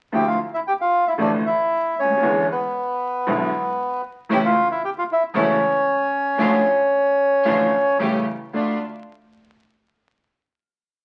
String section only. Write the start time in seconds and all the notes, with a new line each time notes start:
4.31 A3 C#4 E4
5.34 A3 C#4 E4
6.40 A3 D4 F4
7.46 A3 D4 F4
8.00 A3 C#4 G4
8.54 A3 D4 F4